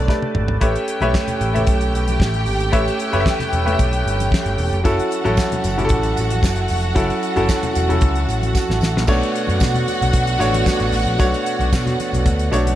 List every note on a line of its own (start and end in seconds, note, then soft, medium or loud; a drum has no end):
0.00 0.08 A3 medium
0.00 0.57 A3 medium
0.00 0.57 D4 medium
0.00 0.09 G4 medium
0.00 0.59 A4 medium
0.00 0.09 B4 medium
0.00 0.61 C#5 medium
0.00 0.09 D5 medium
0.08 0.51 A3 medium
0.08 0.51 G4 medium
0.08 0.51 B4 medium
0.08 0.52 D5 medium
0.08 kick medium
0.08 snare medium
0.08 muted conga soft
0.08 high conga medium
0.22 high tom medium
0.22 muted conga soft
0.35 0.56 G#1 medium
0.35 mid tom medium
0.48 floor tom medium
0.60 0.72 A1 medium
0.60 0.93 A3 medium
0.60 4.81 A3 medium
0.60 4.81 C#4 medium
0.60 0.93 G4 medium
0.60 4.81 G4 medium
0.60 0.93 B4 medium
0.60 0.93 C#5 medium
0.60 0.93 E5 medium
0.60 4.81 G5 medium
0.60 kick medium
0.60 closed hi-hat medium
0.60 muted conga soft
0.76 closed hi-hat soft
0.88 closed hi-hat medium
1.01 1.12 B1 medium
1.01 1.43 A3 medium
1.01 1.43 G4 medium
1.01 1.43 B4 medium
1.01 1.43 C#5 medium
1.01 1.44 E5 medium
1.01 closed hi-hat soft
1.01 high conga medium
1.14 kick loud
1.14 snare loud
1.14 clap medium
1.14 high conga medium
1.28 closed hi-hat medium
1.28 muted conga soft
1.28 low conga medium
1.41 1.61 A1 medium
1.41 closed hi-hat medium
1.41 high conga medium
1.54 2.38 A3 medium
1.54 2.38 G4 medium
1.54 2.38 B4 medium
1.54 2.38 C#5 medium
1.54 2.38 E5 medium
1.54 closed hi-hat soft
1.54 low conga medium
1.67 1.88 B1 medium
1.67 kick loud
1.67 closed hi-hat medium
1.67 low conga medium
1.81 closed hi-hat soft
1.81 muted conga soft
1.93 2.14 B1 medium
1.93 closed hi-hat medium
2.08 closed hi-hat medium
2.08 high conga medium
2.20 2.49 A1 medium
2.20 kick medium
2.20 snare loud
2.20 clap medium
2.20 muted conga soft
2.20 high conga medium
2.34 closed hi-hat soft
2.34 muted conga soft
2.46 2.68 G#1 medium
2.46 open hi-hat medium
2.60 closed hi-hat soft
2.72 2.84 A1 medium
2.72 3.04 A3 medium
2.72 3.04 G4 medium
2.72 3.04 B4 medium
2.72 3.05 C#5 medium
2.72 3.05 E5 loud
2.72 kick medium
2.72 closed hi-hat medium
2.88 closed hi-hat soft
3.00 closed hi-hat medium
3.12 3.23 F#1 medium
3.12 3.54 A3 medium
3.12 3.54 G4 medium
3.12 3.54 B4 medium
3.12 3.55 C#5 medium
3.12 3.19 E5 medium
3.12 closed hi-hat soft
3.12 high conga medium
3.20 3.58 E5 medium
3.26 kick loud
3.26 snare loud
3.26 clap medium
3.26 high conga medium
3.40 snare soft
3.40 closed hi-hat soft
3.40 low conga medium
3.53 3.73 E1 medium
3.53 closed hi-hat medium
3.53 high conga medium
3.65 4.49 A3 medium
3.65 4.49 G4 medium
3.65 4.49 B4 medium
3.65 4.50 C#5 medium
3.65 3.71 E5 medium
3.65 closed hi-hat soft
3.65 low conga medium
3.73 4.53 E5 medium
3.79 4.00 B1 medium
3.79 kick loud
3.79 closed hi-hat medium
3.79 muted conga soft
3.79 low conga medium
3.92 closed hi-hat soft
3.92 muted conga soft
4.06 4.26 G1 medium
4.06 closed hi-hat medium
4.20 closed hi-hat medium
4.20 high conga medium
4.31 kick loud
4.31 snare loud
4.31 clap medium
4.31 muted conga soft
4.31 high conga medium
4.46 4.55 G1 medium
4.46 closed hi-hat soft
4.46 muted conga soft
4.58 4.69 E1 medium
4.58 open hi-hat medium
4.73 4.82 F1 medium
4.73 closed hi-hat soft
4.84 4.96 F#1 loud
4.84 5.16 F#3 medium
4.84 9.05 F#3 medium
4.84 5.16 C#4 medium
4.84 5.16 E4 medium
4.84 9.05 E4 medium
4.84 9.05 F#4 medium
4.84 5.17 A4 loud
4.84 9.05 A4 medium
4.84 9.05 F#5 medium
4.84 kick loud
4.84 closed hi-hat medium
4.84 tambourine medium
4.84 muted conga soft
4.99 closed hi-hat soft
4.99 muted conga soft
5.11 closed hi-hat medium
5.11 tambourine soft
5.24 5.35 A1 medium
5.24 5.66 F#3 loud
5.24 5.66 C#4 medium
5.24 5.66 E4 medium
5.24 5.66 A4 loud
5.24 closed hi-hat soft
5.24 high conga medium
5.37 kick loud
5.37 snare loud
5.37 clap medium
5.37 tambourine medium
5.37 high conga medium
5.52 closed hi-hat medium
5.52 low conga medium
5.64 5.85 F#1 medium
5.64 closed hi-hat medium
5.64 tambourine medium
5.64 high conga medium
5.77 6.61 F#3 medium
5.77 6.61 C#4 medium
5.77 6.61 E4 medium
5.77 5.84 G4 medium
5.77 closed hi-hat medium
5.77 low conga medium
5.85 6.65 A4 medium
5.89 6.11 A1 loud
5.89 kick loud
5.89 closed hi-hat medium
5.89 low conga medium
6.03 closed hi-hat medium
6.03 muted conga soft
6.17 6.38 A1 medium
6.17 closed hi-hat medium
6.17 tambourine medium
6.31 closed hi-hat medium
6.31 high conga medium
6.43 6.64 F#1 medium
6.43 kick loud
6.43 snare loud
6.43 clap medium
6.43 tambourine medium
6.43 muted conga soft
6.43 high conga medium
6.56 closed hi-hat soft
6.56 muted conga soft
6.68 6.91 F1 medium
6.68 open hi-hat medium
6.68 tambourine medium
6.83 closed hi-hat soft
6.95 7.07 F#1 loud
6.95 7.27 F#3 medium
6.95 7.27 C#4 medium
6.95 7.28 E4 medium
6.95 7.28 A4 medium
6.95 kick loud
6.95 closed hi-hat medium
6.95 tambourine medium
7.10 closed hi-hat soft
7.10 muted conga soft
7.23 closed hi-hat medium
7.36 7.47 F#1 medium
7.36 7.78 F#3 medium
7.36 7.78 C#4 medium
7.36 7.78 E4 medium
7.36 7.78 A4 loud
7.36 closed hi-hat soft
7.36 high conga medium
7.49 kick loud
7.49 snare loud
7.49 clap medium
7.49 tambourine loud
7.49 muted conga soft
7.49 high conga medium
7.63 closed hi-hat medium
7.63 muted conga soft
7.63 low conga medium
7.75 7.97 E1 medium
7.75 closed hi-hat medium
7.75 tambourine medium
7.75 high conga medium
7.88 8.73 F#3 medium
7.88 8.73 C#4 medium
7.88 8.73 E4 medium
7.88 8.73 A4 medium
7.88 closed hi-hat soft
7.88 low conga medium
8.01 8.23 C#2 medium
8.01 kick loud
8.01 closed hi-hat medium
8.01 muted conga soft
8.01 low conga medium
8.15 closed hi-hat soft
8.15 muted conga soft
8.29 8.49 A1 medium
8.29 closed hi-hat medium
8.29 tambourine medium
8.42 closed hi-hat medium
8.42 high conga medium
8.53 kick medium
8.53 snare medium
8.53 tambourine medium
8.53 muted conga soft
8.53 high conga medium
8.70 8.79 A1 medium
8.70 snare medium
8.81 8.96 A1 loud
8.81 snare medium
8.81 tambourine medium
8.96 9.06 A#1 medium
8.96 snare medium
9.07 9.19 B1 medium
9.07 9.92 B2 medium
9.07 9.92 A3 medium
9.07 12.75 A3 medium
9.07 12.75 B3 medium
9.07 9.92 D4 medium
9.07 12.75 D4 medium
9.07 12.75 F#4 loud
9.07 9.92 C#5 medium
9.07 12.75 F#5 loud
9.07 kick loud
9.07 crash medium
9.07 tambourine medium
9.22 closed hi-hat soft
9.22 muted conga soft
9.35 closed hi-hat medium
9.47 9.58 F#2 medium
9.47 closed hi-hat soft
9.47 high conga medium
9.60 9.82 B2 medium
9.60 kick loud
9.60 snare loud
9.60 clap medium
9.60 tambourine medium
9.60 high conga medium
9.74 closed hi-hat medium
9.74 low conga medium
9.87 closed hi-hat medium
9.87 tambourine medium
9.87 high conga medium
10.02 10.11 B1 medium
10.02 closed hi-hat soft
10.02 low conga medium
10.12 10.34 B1 medium
10.12 kick loud
10.12 closed hi-hat medium
10.12 low conga medium
10.26 closed hi-hat medium
10.26 muted conga soft
10.39 10.61 A1 medium
10.39 11.03 B2 medium
10.39 11.03 A3 medium
10.39 11.03 D4 medium
10.39 11.04 C#5 medium
10.39 closed hi-hat medium
10.39 tambourine medium
10.54 closed hi-hat medium
10.54 high conga medium
10.66 kick loud
10.66 snare loud
10.66 clap medium
10.66 tambourine medium
10.66 high conga medium
10.80 10.91 A1 medium
10.80 closed hi-hat soft
10.80 muted conga soft
10.92 11.04 A1 loud
10.92 open hi-hat medium
10.92 tambourine medium
11.07 11.17 A#1 medium
11.07 closed hi-hat soft
11.18 11.31 B1 loud
11.18 12.03 B2 medium
11.18 12.03 A3 medium
11.18 12.04 D4 medium
11.18 12.04 C#5 loud
11.18 kick loud
11.18 closed hi-hat medium
11.18 tambourine medium
11.34 closed hi-hat soft
11.46 closed hi-hat medium
11.46 tambourine soft
11.59 11.70 B1 loud
11.59 closed hi-hat soft
11.59 high conga medium
11.73 11.93 B2 loud
11.73 kick loud
11.73 snare loud
11.73 clap medium
11.73 tambourine loud
11.73 high conga medium
11.86 snare soft
11.86 closed hi-hat medium
11.86 muted conga soft
11.86 low conga medium
12.00 closed hi-hat medium
12.00 tambourine medium
12.00 high conga medium
12.13 12.23 B1 medium
12.13 closed hi-hat medium
12.13 low conga medium
12.25 12.46 D2 loud
12.25 kick loud
12.25 closed hi-hat medium
12.25 tambourine soft
12.25 muted conga soft
12.25 low conga medium
12.39 closed hi-hat medium
12.39 muted conga soft
12.51 12.73 B1 medium
12.51 12.75 B2 medium
12.51 12.75 A3 medium
12.51 12.75 D4 medium
12.51 12.75 C#5 medium
12.51 closed hi-hat medium
12.51 tambourine medium
12.67 closed hi-hat medium
12.67 high conga medium